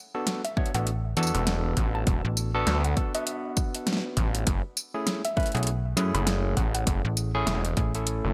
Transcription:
0.15 B3 D4 F#4 A4
0.27 snare, closed hi-hat
0.45 E5, closed hi-hat
0.57 B3 D4 F#4 C#5 E5, kick
0.66 closed hi-hat
0.75 A1 B3 D4 F#4 A4 F#5, closed hi-hat
0.87 closed hi-hat
1.17 E2 B3 D4 F#4 A4, closed hi-hat, tambourine
1.23 tambourine
1.27 tambourine
1.35 E1, closed hi-hat
1.47 cross-stick, snare, closed hi-hat
1.77 A1, kick, closed hi-hat
1.95 A5
2.07 E1, kick, closed hi-hat
2.25 A1
2.37 tambourine
2.55 B3 D4 F#4 A4
2.67 D2, snare, closed hi-hat
2.84 F#5, closed hi-hat
2.97 B3 D4 F#4 A4, kick, closed hi-hat
3.15 B3 D4 F#4 B4 E5, closed hi-hat
3.27 closed hi-hat
3.57 kick, tambourine
3.75 closed hi-hat
3.87 snare, closed hi-hat
3.93 snare
3.97 snare
4.17 A1, kick, cross-stick, closed hi-hat
4.35 closed hi-hat
4.47 F#1, kick, closed hi-hat
4.77 tambourine
4.94 A3 C#4 E4 G#4
5.07 snare, closed hi-hat
5.25 E5, closed hi-hat
5.37 A3 C#4 E4 B4 E5, kick, closed hi-hat
5.40 closed hi-hat
5.43 closed hi-hat
5.46 closed hi-hat
5.52 A3 C#4 E4 G#4 F#5, closed hi-hat
5.55 B1, closed hi-hat
5.57 closed hi-hat
5.63 closed hi-hat
5.67 closed hi-hat
5.97 F#2 A3 C#4 E4 G#4, closed hi-hat, tambourine
6.14 F#1 B5, closed hi-hat
6.27 cross-stick, snare, closed hi-hat
6.57 A1 F#5, kick, closed hi-hat
6.75 F#5, closed hi-hat
6.87 F#1, kick, closed hi-hat
7.05 A1
7.17 closed hi-hat, tambourine
7.35 A3 C#4 E4 G#4
7.46 E1 E5, snare, closed hi-hat
7.65 closed hi-hat
7.77 A1 A3 C#4 E4 G#4, kick, closed hi-hat
7.95 A3 C#4 E4 A4, closed hi-hat
8.07 closed hi-hat
8.25 F#1

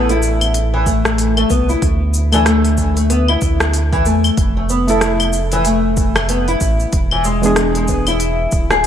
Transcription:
Already playing: A1 E4 A4
0.09 E4, open hi-hat
0.23 shaker
0.41 open hi-hat, claves, shaker
0.54 open hi-hat, shaker
0.74 E3
0.86 A3, kick, shaker
1.05 cross-stick, shaker
1.18 open hi-hat, shaker
1.37 A3, open hi-hat, claves
1.50 C2 B3, kick, shaker
1.69 E4, shaker
1.82 D2, kick, open hi-hat, shaker
2.14 shaker
2.32 E3 A3 D4 A4, open hi-hat, claves, shaker
2.46 A3, cross-stick, open hi-hat, shaker
2.65 open hi-hat
2.78 kick, shaker
2.97 A3, open hi-hat, shaker
3.10 B3, open hi-hat, shaker
3.28 E4, claves
3.42 D2, kick, shaker
3.60 cross-stick, shaker
3.74 open hi-hat, shaker
3.93 E3, kick, open hi-hat
4.06 E2 A3, shaker
4.24 claves, shaker
4.37 F1, kick, open hi-hat, shaker
4.57 A3
4.69 B3, shaker
4.87 A3 E4 A4, open hi-hat, shaker
5.01 cross-stick, open hi-hat, shaker
5.20 open hi-hat, claves
5.33 shaker
5.52 E3, open hi-hat, shaker
5.65 A3, open hi-hat, shaker
5.97 kick, shaker
6.16 A3, cross-stick, claves, shaker
6.29 B3, open hi-hat, shaker
6.48 E4, open hi-hat
6.61 A1, kick, shaker
6.80 shaker
6.93 E1, kick, open hi-hat, shaker
7.11 E3, claves
7.24 G#3, shaker
7.42 E3 G#3 B3 D4 G#4, open hi-hat, shaker
7.56 cross-stick, open hi-hat, shaker
7.75 G#3, open hi-hat
7.88 B3, kick, shaker
8.07 E4, open hi-hat, claves, shaker
8.20 open hi-hat, shaker
8.52 D1, kick, shaker
8.71 G#4, cross-stick, shaker

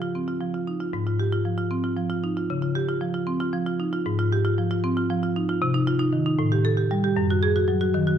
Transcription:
Already playing: C#3
0.02 F4
0.15 C4
0.28 F4
0.41 F3
0.54 F4
0.67 D#4
0.80 F4
0.93 G#2
1.07 F4
1.20 G4
1.32 F4
1.45 F3
1.58 F4
1.71 C4
1.84 F4
1.97 F3
2.10 F4
2.24 D#4
2.37 F4
2.50 C#3
2.62 F4
2.75 G4
2.89 F4
3.01 F3
3.14 F4
3.27 C4
3.40 F4
3.53 F3
3.66 F4
3.80 D#4
3.93 F4
4.06 G#2
4.19 F4
4.32 G4
4.45 F4
4.58 F3
4.71 F4
4.84 C4
4.97 F4
5.10 F3
5.23 F4
5.36 D#4
5.49 F4
5.62 C3
5.74 D#4
5.87 F4
5.99 D#4
6.13 D#3
6.26 D#4
6.39 A2
6.52 G4
6.65 A4
6.77 G4
6.91 G3
7.04 G4
7.17 F#2
7.30 F#4
7.43 G#4
7.56 F#4
7.68 F#3
7.81 F#4
7.94 D#3
8.07 F#4

